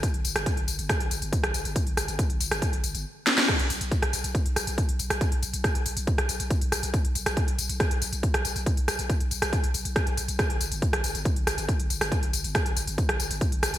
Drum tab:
CC |----------------|----------------|x---------------|----------------|
HH |xxoxxxoxxxoxxxox|xxoxxxoxxxox----|xxoxxxoxxxoxxxoo|xxoxxxoxxxoxxxox|
TB |x-xxx-xxx-xxx-xx|x-xxx-xxx-xx----|x-xxx-xxx-xxx-xx|x-xxx-xxx-xxx-xx|
SD |---r----r----r--|--r----r------oo|r----r----r----r|----r----r----r-|
BD |o---o---o---o---|o---o---o-------|o---o---o---o---|o---o---o---o---|

CC |----------------|----------------|----------------|----------------|
HH |xxoxxxoxxxoxxxoo|xxoxxxoxxxoxxxox|xxoxxxoxxxoxxxoo|xxoxxxoxxxoxxxox|
TB |x-xxx-xx--xxx-xx|x-xxx-xxx-xxx-xx|x-xxx-xxx-xxx-xx|x-xxx-xxx-xxx-xx|
SD |---r----r----r--|--r----r----r---|r----r----r----r|----r----r----r-|
BD |o---o---o---o---|o---o---o---o---|o---o---o---o---|o---o---o---o---|